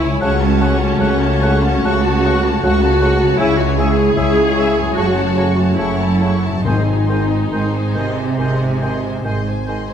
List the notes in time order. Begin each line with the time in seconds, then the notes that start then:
Already playing: C#2 G#3 C#4 E4
0.02 C#3 C#5 G#5
0.09 A3
0.13 C#4
0.18 C#3 A3 F#4 F#5 A5
0.22 C#2 C#4 F#4 A4 F#5 C#6
0.40 C#5 A5
0.60 C#3 A4 F#5 A5 C#6
0.79 C#5 A5
0.99 C#2 C#3 A4 F#5 A5 C#6
1.20 C#5 A5
1.42 C#3 A4 F#5 A5 C#6
1.63 C#5 A5
1.84 C#2 C#3 F#4 A4 F#5 A5 C#6
2.05 C#5 A5
2.25 C#3 A4 F#5 A5 C#6
2.45 C#5 A5
2.63 C#2 C#3 F#4 A4 F#5 A5 C#6
2.67 F#5
2.83 C#5 A5
3.01 C#3 A4 F#5 A5 C#6
3.21 C#3 C#5 A5
3.26 C#4
3.31 E4
3.36 C#2 G#3 E4 G#4
3.40 C#3 E5 G#5 C#6
3.58 F#4 C#5 G#5
3.77 C#3 G#4 E5 G#5 C#6
3.97 C#5 G#5
4.16 C#2 C#3 G#4 E5 G#5 C#6
4.38 C#5 G#5
4.57 C#3 G#4 E5 G#5 C#6
4.78 F#2 C#5 G#5
4.83 C#4
4.88 F#4
4.96 F#1 F#2 C#3 A3 C#4 F#4 A4 C#5 F#5 A5 C#6
5.17 C#5 A5
5.37 C#3 A4 C#5 F#5 A5 C#6
5.57 C#5 A5
5.77 F#1 F#2 C#3 E4 A4 C#5 F#5 A5 C#6
5.99 C#5 A5
6.21 C#3 A4 C#5 F#5 A5 C#6
6.42 C#5 A5
6.48 G#2
6.52 C4
6.57 D#4
6.61 G#1 G#2 G#3 C4 D#4 G#4 C6
6.65 D#3 G#4 C5 D#5 G#5
6.85 C5 G#5
7.07 D#3 G#4 C5 D#5 G#5 C6
7.29 G#5
7.33 C5
7.51 G#1 G#2 D#3 G#4 C5 D#5 C6
7.55 G#5
7.73 C5 G#5
7.95 C3 D#3 G#4 C5 D#5 G#5 C6
8.17 C5 G#5
8.38 G#1 D#3 G#4 C5 D#5 G#5 C6
8.60 C5 G#5
8.82 D#3 G#4 C5 D#5 G#5 C6
9.03 C5 G#5
9.24 G#1 G#2 D#3 G#4 C5 D#5 G#5 C6
9.47 C5 G#5
9.66 D#3 G#4 C5 D#5 G#5 C6
9.89 C5 G#5